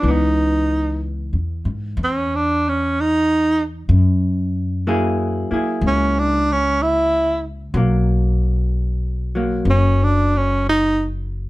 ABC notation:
X:1
M:4/4
L:1/8
Q:"Swing" 1/4=63
K:C#dor
V:1 name="Tenor saxophone"
D2 z2 (3C =D C ^D z | z4 (3C =D C E z | z4 (3C =D C ^D z |]
V:2 name="Hollow-body jazz guitar"
[E,B,]8 | z2 [F,A,EG] [A,EG]4- [A,EG] | [F,A,]3 [F,A,]4- [F,A,] |]
V:3 name="Upright bass" clef=bass
C,,2- (3C,, E,, G,, E,,4 | F,,3 z C,,4 | B,,,4 F,,,4 |]